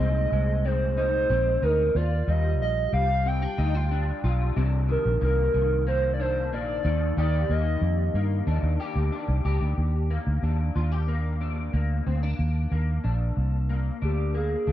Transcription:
0.00 0.25 C2 medium
0.00 1.95 A#2 medium
0.00 0.31 G#3 medium
0.00 0.64 C4 medium
0.00 0.97 D#4 medium
0.00 2.31 G#4 medium
0.00 0.67 D#5 loud
0.32 1.26 C2 medium
0.32 2.02 G#3 medium
0.65 1.28 C4 medium
0.65 0.97 C5 medium
0.97 1.62 D#4 medium
0.97 1.65 C5 loud
1.30 1.56 A#1 medium
1.30 2.02 C4 medium
1.62 1.88 D2 medium
1.62 1.96 D#4 medium
1.62 1.97 A#4 medium
1.95 2.21 D#2 loud
1.95 3.58 F4 medium
1.95 2.31 D5 loud
2.27 2.60 D#2 loud
2.27 2.92 G3 medium
2.27 2.61 D#5 loud
2.60 2.86 A#1 loud
2.60 2.92 D#5 loud
2.93 3.45 C2 medium
2.93 4.88 G3 medium
2.93 3.28 F5 loud
3.25 3.42 C4 medium
3.25 4.24 G5 loud
3.42 3.90 D4 medium
3.58 4.11 D2 medium
3.58 3.75 D#4 medium
3.75 4.23 F4 medium
3.91 4.57 D4 medium
4.24 4.50 B1 medium
4.24 4.56 F4 medium
4.56 4.96 C2 loud
4.56 6.91 C3 medium
4.56 6.19 D4 medium
4.88 5.53 D#3 medium
4.88 5.20 A#4 medium
5.05 5.18 A#1 medium
5.21 5.48 C2 medium
5.21 5.86 A#3 medium
5.21 5.84 A#4 medium
5.54 6.52 C2 loud
5.54 6.84 D#3 medium
5.87 6.52 A#3 medium
5.87 6.11 C5 loud
6.14 6.22 D5 medium
6.19 7.20 D4 medium
6.19 6.52 C5 medium
6.52 6.78 A#1 loud
6.52 7.50 A#3 medium
6.52 7.14 D5 loud
6.85 7.11 D#2 loud
6.85 7.17 D#3 medium
7.17 7.43 D#2 loud
7.17 10.46 D#3 medium
7.17 8.79 G4 medium
7.17 7.54 D5 loud
7.49 7.76 D#2 medium
7.49 8.15 A#3 medium
7.49 8.16 D#5 loud
7.81 8.08 F2 medium
8.14 8.40 G2 medium
8.14 10.10 A#3 medium
8.47 8.60 D#2 medium
8.47 9.12 D4 medium
8.63 8.76 D#2 medium
8.80 9.45 G4 medium
8.96 9.09 D2 medium
9.12 10.43 D4 medium
9.28 9.42 C2 loud
9.45 9.58 C#2 medium
9.45 10.75 G4 medium
9.61 9.74 D2 medium
9.78 10.17 D#2 loud
10.11 11.08 A#3 medium
10.27 10.40 D2 medium
10.43 10.69 D#2 medium
10.43 11.40 D4 medium
10.76 11.69 D#2 medium
10.76 10.92 F4 medium
10.92 13.36 G4 medium
11.08 11.73 A#3 medium
11.41 12.06 D4 medium
11.73 12.00 D2 medium
11.73 12.71 A#3 medium
12.07 12.32 D2 medium
12.07 12.23 C4 medium
12.23 13.03 D4 medium
12.39 12.65 D#2 loud
12.72 12.98 D#2 medium
12.72 13.69 A#3 medium
13.04 13.30 A#1 medium
13.04 14.01 D4 medium
13.37 13.89 C2 medium
13.70 14.34 A#3 medium
14.02 14.54 D2 medium
14.02 14.66 D4 medium
14.02 14.38 G4 medium
14.35 14.72 A#3 medium
14.35 14.72 G#4 medium
14.67 14.72 D2 medium
14.67 14.72 D4 medium

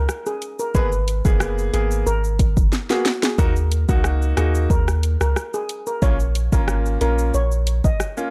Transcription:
0.09 cross-stick medium
0.09 shaker medium
0.26 0.40 G#4 medium
0.26 shaker medium
0.42 closed hi-hat medium
0.42 shaker soft
0.59 0.73 A#4 medium
0.59 shaker medium
0.74 1.21 G#1 loud
0.74 0.88 A#3 medium
0.74 0.88 B3 medium
0.74 0.88 G#4 loud
0.74 0.90 B4 loud
0.74 kick loud
0.74 shaker medium
0.92 shaker medium
1.08 closed hi-hat medium
1.08 shaker medium
1.25 1.70 F#1 medium
1.25 1.70 A#3 medium
1.25 1.70 B3 medium
1.25 1.54 G#4 medium
1.25 1.70 G#4 medium
1.25 kick loud
1.25 shaker medium
1.40 cross-stick loud
1.40 shaker medium
1.58 shaker medium
1.73 2.03 G#1 medium
1.73 2.04 A#3 medium
1.73 2.04 B3 medium
1.73 2.03 G#4 medium
1.73 2.04 G#4 medium
1.73 closed hi-hat medium
1.73 shaker soft
1.91 shaker medium
2.07 2.53 G#1 medium
2.07 2.54 A#4 loud
2.07 shaker medium
2.24 shaker medium
2.39 kick medium
2.39 closed hi-hat medium
2.39 shaker medium
2.57 2.71 F#1 medium
2.57 kick medium
2.57 shaker medium
2.72 snare medium
2.72 shaker medium
2.90 3.02 A#3 medium
2.90 3.02 B3 medium
2.90 3.04 F#4 medium
2.90 3.02 G#4 medium
2.90 snare medium
2.90 shaker medium
3.05 snare medium
3.05 closed hi-hat medium
3.05 shaker soft
3.23 3.37 G#4 medium
3.23 snare medium
3.23 shaker medium
3.38 3.85 D#2 loud
3.38 3.52 A#3 medium
3.38 3.52 D#4 medium
3.38 3.52 F#4 loud
3.38 3.67 A#4 loud
3.38 kick loud
3.38 shaker medium
3.56 shaker medium
3.72 closed hi-hat medium
3.72 shaker medium
3.89 4.33 C#2 medium
3.89 4.34 A#3 medium
3.89 4.34 D#4 medium
3.89 4.18 F#4 medium
3.89 4.34 F#4 medium
3.89 kick loud
3.89 shaker medium
4.04 cross-stick loud
4.04 shaker medium
4.22 shaker soft
4.37 4.67 D#2 medium
4.37 4.68 A#3 medium
4.37 4.68 D#4 medium
4.37 4.68 F#4 medium
4.37 4.66 G#4 medium
4.37 cross-stick medium
4.37 closed hi-hat medium
4.37 shaker soft
4.55 shaker medium
4.70 5.17 D#2 loud
4.70 4.86 A#4 medium
4.70 kick medium
4.70 shaker medium
4.88 cross-stick medium
4.88 shaker medium
5.03 closed hi-hat medium
5.03 shaker medium
5.21 5.35 C#2 medium
5.21 5.35 A#4 medium
5.21 cross-stick medium
5.21 shaker medium
5.36 cross-stick medium
5.36 shaker medium
5.54 5.68 G#4 medium
5.54 shaker medium
5.69 closed hi-hat medium
5.69 shaker soft
5.87 6.00 A#4 medium
5.87 shaker medium
6.02 6.49 A#1 loud
6.02 6.15 A#3 medium
6.02 6.16 C#4 medium
6.02 6.16 F4 loud
6.02 6.18 C#5 loud
6.02 kick loud
6.02 shaker medium
6.20 shaker medium
6.35 closed hi-hat medium
6.35 shaker medium
6.52 6.97 G#1 loud
6.52 6.97 A#3 medium
6.52 6.97 C#4 medium
6.52 6.97 F4 medium
6.52 6.82 A#4 medium
6.52 kick medium
6.52 shaker medium
6.68 cross-stick loud
6.68 shaker medium
6.86 shaker medium
7.01 7.31 A#1 loud
7.01 7.31 A#3 medium
7.01 7.32 C#4 medium
7.01 7.32 F4 medium
7.01 7.30 A#4 medium
7.01 closed hi-hat medium
7.01 shaker soft
7.18 shaker medium
7.34 7.81 A#1 loud
7.34 7.50 C#5 medium
7.34 shaker medium
7.51 shaker medium
7.67 closed hi-hat medium
7.67 shaker medium
7.84 7.98 G#1 medium
7.84 7.98 D#5 medium
7.84 kick medium
7.84 shaker medium
8.00 cross-stick medium
8.00 shaker medium
8.17 8.29 A#3 medium
8.17 8.29 C#4 medium
8.17 8.29 F4 medium
8.17 shaker medium

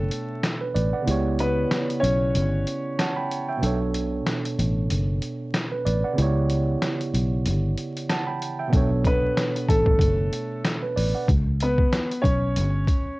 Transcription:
0.00 1.00 B2 medium
0.00 0.57 A3 medium
0.00 1.01 B3 medium
0.00 1.03 D4 medium
0.00 0.57 A4 medium
0.00 1.04 A4 medium
0.00 0.41 C#5 medium
0.11 closed hi-hat medium
0.43 snare loud
0.43 closed hi-hat medium
0.61 0.74 B4 medium
0.75 0.91 A1 medium
0.75 0.92 B4 medium
0.75 0.92 D5 medium
0.75 closed hi-hat medium
0.93 1.24 D5 medium
0.93 1.24 F#5 medium
1.02 2.92 C#3 medium
1.02 2.93 B3 medium
1.07 1.65 C#2 loud
1.07 2.94 E4 medium
1.07 2.96 G4 medium
1.07 closed hi-hat medium
1.11 2.97 C#5 medium
1.39 2.00 B3 medium
1.39 2.00 B4 medium
1.39 closed hi-hat medium
1.71 snare loud
1.71 closed hi-hat medium
1.90 closed hi-hat medium
2.00 2.36 B1 medium
2.00 3.57 C#4 medium
2.00 3.57 C#5 medium
2.00 closed hi-hat medium
2.35 2.63 G1 loud
2.35 closed hi-hat loud
2.67 closed hi-hat medium
2.99 3.16 F#5 medium
2.99 3.16 A5 medium
2.99 snare loud
2.99 closed hi-hat medium
3.16 3.47 G5 medium
3.16 3.47 B5 medium
3.31 closed hi-hat medium
3.49 3.79 E5 medium
3.49 3.79 G5 medium
3.57 6.11 B2 medium
3.57 6.12 B3 medium
3.62 4.20 B1 loud
3.62 6.13 D4 medium
3.62 6.14 A4 medium
3.62 closed hi-hat medium
3.66 5.52 C#5 medium
3.94 closed hi-hat medium
4.26 snare loud
4.26 closed hi-hat medium
4.45 closed hi-hat medium
4.58 4.87 A1 medium
4.58 closed hi-hat medium
4.90 5.19 F#1 medium
4.90 closed hi-hat loud
5.22 closed hi-hat medium
5.54 snare loud
5.54 closed hi-hat medium
5.72 5.85 B4 medium
5.85 6.02 A1 medium
5.85 6.03 B4 medium
5.85 6.03 D5 medium
5.85 closed hi-hat medium
6.04 6.35 D5 medium
6.04 6.34 F#5 medium
6.13 8.03 C#3 medium
6.13 8.04 B3 medium
6.18 6.75 C#2 loud
6.18 8.05 E4 medium
6.18 8.06 G4 medium
6.18 closed hi-hat medium
6.22 8.08 C#5 medium
6.50 closed hi-hat medium
6.82 snare loud
6.82 closed hi-hat medium
7.01 closed hi-hat medium
7.14 7.47 B1 medium
7.14 closed hi-hat medium
7.46 7.74 G1 medium
7.46 closed hi-hat loud
7.77 closed hi-hat medium
7.97 closed hi-hat soft
8.09 8.27 F#5 medium
8.09 8.26 A5 medium
8.09 snare loud
8.09 closed hi-hat medium
8.27 8.58 G5 medium
8.27 8.57 B5 medium
8.42 closed hi-hat medium
8.59 8.90 E5 medium
8.59 8.89 G5 medium
8.68 11.22 B2 medium
8.68 11.23 B3 medium
8.72 9.30 B1 loud
8.72 11.24 D4 medium
8.72 11.25 A4 medium
8.72 kick loud
8.72 closed hi-hat medium
8.77 10.62 C#5 medium
9.05 9.66 B3 medium
9.05 9.66 B4 medium
9.05 kick medium
9.05 closed hi-hat medium
9.37 snare loud
9.37 closed hi-hat medium
9.56 closed hi-hat medium
9.68 9.97 A1 medium
9.68 10.79 A3 medium
9.68 10.78 A4 medium
9.68 kick medium
9.68 closed hi-hat medium
9.86 kick medium
9.99 10.28 F#1 medium
9.99 kick medium
9.99 closed hi-hat loud
10.33 closed hi-hat medium
10.65 snare loud
10.65 closed hi-hat medium
10.83 10.96 B4 medium
10.96 11.13 A1 medium
10.96 11.14 B4 medium
10.96 11.13 D5 medium
10.96 open hi-hat soft
11.15 11.28 D5 medium
11.15 11.28 F#5 medium
11.28 11.86 C#2 loud
11.28 kick loud
11.28 closed hi-hat medium
11.60 12.22 B3 medium
11.60 12.21 B4 medium
11.60 closed hi-hat medium
11.78 kick loud
11.93 snare loud
11.93 closed hi-hat medium
12.12 closed hi-hat medium
12.22 12.58 B1 medium
12.22 13.20 C#4 medium
12.22 13.20 C#5 medium
12.22 kick medium
12.22 closed hi-hat medium
12.56 12.85 G1 loud
12.56 closed hi-hat loud
12.88 kick medium
12.88 closed hi-hat medium

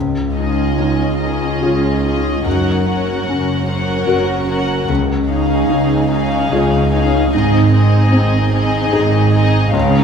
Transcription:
0.00 0.69 C#2 soft
0.00 2.41 C#2 soft
0.00 2.48 C#3 soft
0.34 1.20 C#4 soft
0.34 2.01 D#4 soft
0.34 1.18 G#4 soft
0.34 1.18 D#5 soft
0.39 1.20 F4 soft
0.78 1.52 C#2 soft
0.78 2.12 D#4 soft
0.78 1.60 G#4 soft
1.19 2.02 C#4 soft
1.19 2.02 F4 soft
1.19 2.02 G#4 soft
1.19 1.91 A#4 soft
1.19 2.01 D#5 soft
1.61 2.35 C#2 soft
1.61 2.36 C#2 soft
1.61 2.41 F4 soft
1.61 2.48 G#4 soft
1.61 2.41 G#4 soft
2.02 2.45 C#4 soft
2.02 2.48 D#4 soft
2.02 2.44 F4 soft
2.02 2.44 G#4 soft
2.02 2.45 D#5 soft
2.44 3.18 F#1 soft
2.44 4.92 F#2 soft
2.44 4.85 F#2 soft
2.44 3.18 F#2 soft
2.44 2.86 C#4 soft
2.44 2.86 F#4 soft
2.44 2.86 A#4 soft
2.44 2.86 F#5 soft
2.86 4.47 C#4 soft
2.86 3.67 C#4 soft
2.86 3.67 F#4 soft
2.86 3.68 A#4 soft
2.86 3.67 F#5 soft
3.26 3.99 F#1 soft
3.26 3.99 F#2 soft
3.26 4.57 C#4 soft
3.26 4.06 A#4 soft
3.67 4.46 C#4 soft
3.67 4.46 F#4 soft
3.67 4.47 A#4 soft
3.67 4.36 C5 soft
3.67 4.48 F#5 soft
4.07 4.80 F#1 soft
4.07 4.80 F#2 soft
4.07 4.84 F#4 soft
4.07 4.92 A#4 soft
4.07 4.85 A#4 soft
4.47 4.87 C#4 soft
4.47 7.36 C#4 soft
4.47 4.87 F#4 soft
4.47 4.88 A#4 soft
4.47 4.89 F#5 soft
4.88 5.60 C#2 soft
4.88 7.29 C#2 soft
4.88 5.61 C#2 soft
4.88 7.36 C#3 soft
5.28 6.09 C#4 soft
5.28 6.09 D#4 soft
5.28 6.91 D#4 soft
5.28 6.10 G#4 soft
5.28 6.09 F5 soft
5.69 6.42 C#2 soft
5.69 7.00 D#4 soft
5.69 6.50 G#4 soft
6.10 6.90 C#4 soft
6.10 6.90 D#4 soft
6.10 6.91 G#4 soft
6.10 6.81 A#4 soft
6.10 6.91 F5 soft
6.51 7.23 C#2 medium
6.51 7.24 C#2 medium
6.51 7.29 F4 soft
6.51 8.13 G#4 soft
6.51 7.29 G#4 soft
6.92 7.32 C#4 soft
6.92 7.31 D#4 soft
6.92 10.04 D#4 soft
6.92 7.32 G#4 soft
6.92 7.32 F5 soft
7.32 8.04 G#1 medium
7.32 8.03 G#2 soft
7.32 9.77 G#2 soft
7.32 9.71 G#2 soft
7.32 7.71 C4 soft
7.32 7.72 D#4 soft
7.32 7.72 G#4 soft
7.32 7.72 D#5 soft
7.73 8.51 C4 soft
7.73 9.33 C4 soft
7.73 8.51 D#4 soft
7.73 8.51 G#4 soft
7.73 8.51 D#5 soft
8.13 8.84 G#1 medium
8.13 8.84 G#2 soft
8.13 9.42 C4 soft
8.13 8.93 G#4 soft
8.53 9.32 C4 soft
8.53 9.32 D#4 soft
8.53 9.33 G#4 soft
8.53 9.22 A#4 soft
8.53 9.33 D#5 soft
8.93 9.65 G#1 medium
8.93 9.64 G#2 medium
8.93 9.70 D#4 soft
8.93 9.70 G#4 soft
8.93 10.04 G#4 soft
9.34 9.74 C4 soft
9.34 9.78 C4 soft
9.34 9.73 D#4 soft
9.34 9.73 G#4 soft
9.34 9.74 D#5 soft
9.73 10.04 C#2 soft
9.73 10.04 C#2 medium
9.73 10.04 C#3 medium
9.73 9.92 C#4 medium
9.73 10.04 C#4 soft
9.73 10.04 D#4 medium
9.73 10.04 F5 medium
9.96 10.04 D#4 soft

